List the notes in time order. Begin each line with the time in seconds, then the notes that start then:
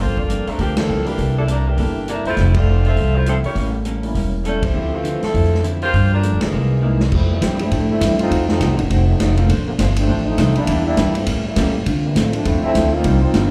0.00 G1 G2 F3 A#3 C4 F4 A4 C5
0.17 A#3 F4 A4 D5, kick
0.28 G2 F3 A#3 C4, closed hi-hat
0.47 F3 A3 D4 A#4, muted upright bass stroke, open hi-hat
0.58 D2 G2 F3 A#3 C4 D4 G4, kick, open hi-hat
0.77 F3 A#3 D4 A4, snare, ride
0.89 C#2 G2 F3 A#3 C4
1.05 E3 A#3 D4 E4 G4 A4, open hi-hat
1.16 C2 C3 A#3 E4 A4, kick, open hi-hat
1.38 G3 D4 E4 A4
1.47 C3 G3 A#3 D4 E4 A4 A#4, closed hi-hat
1.68 E3 A#3 D4 G4
1.76 G1 C3 A#3 D4 E4 A4, kick, open hi-hat
2.08 C3 G3 A#3 D4 E4 A4 A#4, closed hi-hat
2.24 E1 A3 E4 F4 C5, open hi-hat
2.37 F1 F2 E3 A3 C4, kick, snare, open hi-hat
2.54 A3 C4 E4 F4 G4 A4 D5, kick, ride
2.68 F2 E3 A3 C4
2.85 C4 F4 A4 E5, open hi-hat
2.96 C2 F2 E3 A3 C4, kick, open hi-hat
3.15 A3 E4 F4 C5
3.26 F2 E3 F3 A3 C4 E4 A4, closed hi-hat
3.43 A#1 A#3 E4 G4 C#5, open hi-hat
3.55 A1 A2 G3 A#3 C#4, kick, open hi-hat
3.85 A2 G3 A#3 C#4, closed hi-hat
4.03 G3 A#3 C#4 E4, open hi-hat
4.15 E1 A2 G3 A#3 C#4, kick, open hi-hat
4.44 A2 G3 A#3 C#4 E4 A4, closed hi-hat
4.63 F3 C4 E4 G4, kick, ride
4.74 D2 D3 F3 A3 C4 E4
4.94 E3 A3 C4 F4
5.03 D3 F3 C4 E4, closed hi-hat
5.22 F3 C4 E4 A4, muted upright bass stroke, snare, open hi-hat
5.33 F2 D3 F3 C4 E4, kick, open hi-hat
5.44 snare
5.54 snare
5.63 D3 F3 C4 E4, closed hi-hat
5.82 A#3 F4 G4 C5, open hi-hat
5.93 G2 F3 A#3 D4, kick, open hi-hat
6.14 G3 D4 F4 A#4
6.22 G2 F3 A3 A#3 D4, closed hi-hat
6.33 F2
6.41 D2 E3 A#3 D#4 G#4, snare, ride
6.53 C2 C3 G#3 A#3 E4
6.82 C3 E3 G#3 A#3 D#4 E4
7.00 snare
7.11 F2 F3 G3 A3 C4 E4 G4, kick, crash
7.31 C3 E3 G3 A#3
7.41 G2 E3 F3 G3 A3 C4 E4 G4, kick, snare, hi-hat pedal, ride
7.59 F3 G3 A3 C4 D4 E4, ride
7.70 A2 F3 A3 E4 G4, kick, ride
7.90 G3 A3 C4 E4
8.00 G2 F3 A3 E4 G4, kick, snare, hi-hat pedal, ride
8.19 A3 C4 D#4 F4, ride
8.29 F2 F3 A3 D#4 F#4, kick, ride
8.48 A3 C4 D#4 F4, snare
8.60 C2 F3 A3 D#4 F#4, kick, snare, hi-hat pedal, ride
8.70 A1
8.78 F1 D#3 F#3 A#3 C#4, ride
8.90 F1 D#3 F3 F#3 A3 C4 D#4 F#4, kick, ride
9.07 F#3 A3 C4 D#4
9.19 F1 F3 A3 D#4 F#4, kick, snare, hi-hat pedal, ride
9.36 D3 A3 A#3 C4 F4, ride
9.49 A#1 A#3 D4 A4 C5, kick, ride
9.67 C3 D3 F3 A#3
9.78 G1 D3 F3 A3 A#3 C4 D4 A4 C5, kick, snare, hi-hat pedal, ride
9.96 F3 A3 C4 D4, ride
10.08 A1 A#3 D4 A4 C5, kick
10.27 F3 A3 C4 D#4
10.38 C2 A#3 D4 A4 C5, kick, snare, hi-hat pedal, ride
10.55 E3 G3 A#3 D4 E4, muted upright bass stroke, ride
10.67 E2 E3 A#3 D4 G4, kick, ride
10.86 G3 A#3 D4 E4
10.96 G2 E3 G3 A#3 D4 E4 G4, kick, snare, hi-hat pedal, ride
11.15 D3 F3 A3 C4, ride
11.26 A2 C#3 E3 G3 A#3 C#4, kick, ride
11.46 G3 A#3 C#4 E4
11.56 A2 A#2 G3 A3 A#3 C#4 G4, kick, snare, hi-hat pedal, ride
11.86 D3 A3 C4 F4, kick, ride
12.04 C3 E3 G3 A#3
12.15 A2 D3 F3 A3 C4 F4, kick, snare, hi-hat pedal, ride
12.33 F3 A3 C4 D4, ride
12.45 F2 D3 F3 A3 C4 D4 E4 F4, kick, ride
12.63 A3 C4 D4 E4, muted upright bass stroke
12.74 D2 D3 A3 C4 F4, kick, snare, hi-hat pedal, ride
12.93 A#3 C4 D#4 F4
13.04 C2 C3 G3 A#3 C4 D4 D#4, kick, ride
13.22 A#3 C4 D#4 F4, muted upright bass stroke
13.33 G1 C3 G3 A#3 D#4, kick, snare, hi-hat pedal, ride